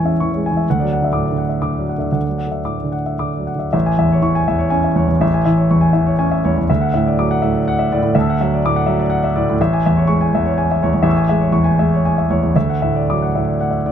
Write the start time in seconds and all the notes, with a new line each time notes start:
Already playing: A1 E2 E3 G#3 C#5 E5 G#5 C#6
0.04 C#4 E5
0.20 E3 C#6
0.32 C#5
0.36 G#3
0.46 G#5
0.51 E3
0.57 E5
0.70 D2 F#5
0.80 F#3 D5
0.93 F#5
1.01 D3 E5
1.13 A2 D6
1.26 D5
1.32 D3
1.38 F#5
1.49 E5
1.62 D3 D6
1.76 F#3 D5
1.89 F#5
1.98 D3 E5
2.12 D2 F#5
2.25 F#3 D5
2.38 F#5
2.47 D3
2.52 E5
2.64 A2 D6
2.78 D5
2.84 D3
2.92 F#5
3.06 E5
3.19 D3 D6
3.33 D5
3.38 F#3
3.47 F#5
3.55 D3 E5
3.73 A1 E5
3.86 G#5
3.98 E2 E5
4.12 C#5
4.22 E3 C#6
4.35 G#5
4.48 E2 E5
4.59 C#5
4.70 C#4 G#5
4.84 E5
4.96 E2 C#5
5.08 E2
5.21 A1 E5
5.34 G#5
5.46 E3 E5
5.58 C#5
5.71 E2 C#6
5.81 G#5
5.93 E3 E5
6.07 C#5
6.19 C#4 G#5
6.31 E5
6.45 E2 C#5
6.58 E2
6.70 D2 E5
6.81 F#5
6.94 A2 E5
7.06 D5
7.19 F#3 D6
7.31 F#5
7.42 A2 E5
7.53 D5
7.68 F#5
7.79 E5
7.92 A2 D5
8.03 A2
8.15 D2 E5 F#5
8.19 A5 E6
8.30 F#5
8.40 F#3 E5
8.54 D5
8.65 A2 D6
8.76 F#5
8.86 F#3 E5
9.00 D5
9.10 F#5
9.24 E5
9.36 A2 D5
9.50 A2
9.61 A1 E5
9.73 G#5
9.86 E2 E5
9.97 C#5
10.07 G#3 C#6
10.21 G#5
10.34 E2 E5
10.46 C#5
10.58 G#5
10.71 E5
10.83 E2 C#5
10.94 E2
11.03 A1 E5 G#5 C#6
11.10 E6
11.17 G#5
11.29 G#3 E5
11.41 C#5
11.52 E2 C#6
11.64 G#5
11.79 G#3 E5
11.94 C#5
12.05 G#5
12.18 E5
12.30 E2 C#5
12.43 E2
12.56 D2 E5
12.70 F#5
12.82 A2 E5
12.95 D5
13.10 F#3 D6
13.22 F#5
13.35 A2 E5
13.48 D5
13.61 F#5
13.71 E5
13.86 A2 D5